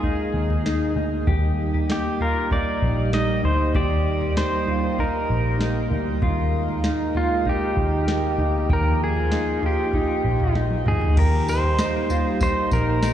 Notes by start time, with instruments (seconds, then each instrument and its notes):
Already playing: picked electric bass D#2, analog synth pad G#3 A#3 D#4 G#4, pedal steel guitar G#4
0.03 clean electric guitar D#4, kick, floor tom
0.34 picked electric bass D#2
0.50 floor tom
0.66 clean electric guitar D#4, snare
0.96 picked electric bass D2, clean electric guitar D#4
1.27 picked electric bass D#2, analog synth pad G3 D#4 G4, clean electric guitar G4, kick, floor tom
1.74 floor tom
1.89 clean electric guitar D#4, pedal steel guitar G4, snare
2.20 clean electric guitar F4, pedal steel guitar A#4, floor tom
2.51 clean electric guitar D#4, pedal steel guitar D5, kick, floor tom
2.82 picked electric bass A#1, kick
3.13 clean electric guitar D#4, pedal steel guitar D#5, snare
3.44 picked electric bass D2, clean electric guitar D#4, pedal steel guitar C5, floor tom
3.75 picked electric bass D#2, clean electric guitar G4, pedal steel guitar D5, kick, floor tom
4.21 floor tom
4.37 clean electric guitar D#4, pedal steel guitar C5, snare
4.67 clean electric guitar F4, floor tom
4.98 clean electric guitar D#4, pedal steel guitar A#4, kick, floor tom
5.30 picked electric bass A#1
5.60 clean electric guitar D#4, snare
5.91 picked electric bass D2, clean electric guitar D#4, floor tom
6.21 picked electric bass D#2, analog synth pad G#3 A#3 A#4, clean electric guitar F4, kick, floor tom
6.69 floor tom
6.84 clean electric guitar D#4, snare
7.15 clean electric guitar F4, pedal steel guitar F4, floor tom
7.45 clean electric guitar D#4, pedal steel guitar G4, kick, floor tom
7.77 picked electric bass D#2, kick
8.08 clean electric guitar D#4, snare
8.39 picked electric bass D2, clean electric guitar D#4, floor tom
8.70 picked electric bass D#2, analog synth pad F3 F4, pedal steel guitar A#4, clean electric guitar G5, kick, floor tom
9.04 pedal steel guitar G#4
9.16 floor tom
9.32 clean electric guitar D#4, snare
9.63 clean electric guitar F4, pedal steel guitar G4, floor tom
9.93 clean electric guitar D#4, kick, floor tom
10.25 picked electric bass A#1
10.40 floor tom
10.55 clean electric guitar D#4, snare
10.71 high tom
10.86 picked electric bass D2, clean electric guitar D#4, pedal steel guitar G#4, mid tom
11.01 floor tom
11.17 picked electric bass D#2, analog synth pad G3 A#3 D#4 G4, clean electric guitar G4, pedal steel guitar A#4, kick, floor tom, crash
11.48 pedal steel guitar C5, tambourine
11.64 floor tom
11.79 clean electric guitar D#4, snare, tambourine
12.10 clean electric guitar F4, floor tom, tambourine
12.41 clean electric guitar D#4, pedal steel guitar C5, kick, floor tom, tambourine
12.71 picked electric bass A#1, pedal steel guitar A#4, kick, tambourine
13.03 clean electric guitar D#4, snare, tambourine